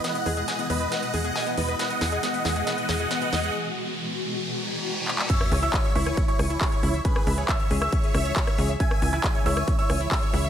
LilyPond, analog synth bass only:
\new Staff \with { instrumentName = "Analog synth bass" } { \clef bass \time 4/4 \key cis \minor \tempo 4 = 137 r8 e,8 r8 e,8 r8 e,8 r8 e,8 | r8 e,8 r8 e,8 r8 e,8 r8 e,8 | r1 | r8 cis,8 r8 cis,8 r8 cis,8 r8 cis,8 |
r8 cis,8 r8 cis,8 r8 cis,8 r8 cis,8 | r8 cis,8 r8 cis,8 r8 cis,8 r8 cis,8 | }